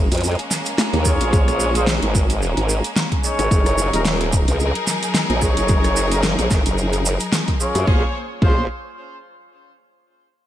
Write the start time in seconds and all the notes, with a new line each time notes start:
Already playing: G#3 A#3 C#4
0.12 F2, closed hi-hat, maracas
0.15 closed hi-hat
0.17 closed hi-hat
0.21 closed hi-hat, maracas
0.27 closed hi-hat
0.31 closed hi-hat
0.35 closed hi-hat
0.39 closed hi-hat
0.51 snare, maracas
0.65 closed hi-hat, maracas
0.78 snare, maracas
0.93 D#2, closed hi-hat
1.05 C#4 F4 G#4 C#5, kick, cross-stick, maracas
1.21 A#1, closed hi-hat, maracas
1.33 kick, maracas
1.48 cross-stick, closed hi-hat, maracas
1.60 maracas
1.75 C#4 F4 G#4 C5, closed hi-hat, maracas
1.87 snare, maracas
2.03 G#1, closed hi-hat
2.15 kick, maracas
2.30 closed hi-hat, maracas
2.42 maracas
2.57 G#1, closed hi-hat
2.69 maracas
2.84 closed hi-hat, maracas
2.96 snare, maracas
3.12 kick, closed hi-hat
3.24 C#4 D#4 G#4 C#5, maracas
3.39 G#1, cross-stick, closed hi-hat, maracas
3.51 F#1 F#3 D#4 G#4 A#4, kick, maracas
3.66 cross-stick, closed hi-hat, maracas
3.78 maracas
3.93 D#1 C#4 D#4 G#4 A#4, closed hi-hat, maracas
4.05 snare, maracas
4.21 closed hi-hat
4.33 kick, maracas
4.48 C#2, closed hi-hat, maracas
4.60 maracas
4.75 closed hi-hat
4.87 snare, maracas
5.03 closed hi-hat, maracas
5.14 snare, maracas
5.30 A#1, closed hi-hat
5.42 C#4 D#4 G#4 C#5, kick, cross-stick, maracas
5.57 F#1, closed hi-hat, maracas
5.68 kick, maracas
5.84 cross-stick, closed hi-hat, maracas
5.96 maracas
6.12 C#4 D#4 G#4 A#4, closed hi-hat, maracas
6.23 snare, maracas
6.39 A#1, closed hi-hat, maracas
6.51 F#1, kick, snare, maracas
6.66 F#1, closed hi-hat, maracas
6.78 maracas
6.93 closed hi-hat, maracas
7.06 maracas
7.20 closed hi-hat, maracas
7.32 snare, maracas
7.48 kick, closed hi-hat
7.60 C#4 F4 G#4 C#5, maracas
7.75 F#2, cross-stick, closed hi-hat, maracas
7.87 A#1 A#3 C#4 F4 G#4 C5 C#5, kick
8.42 A#1 C#4 F4 G#4 C5, kick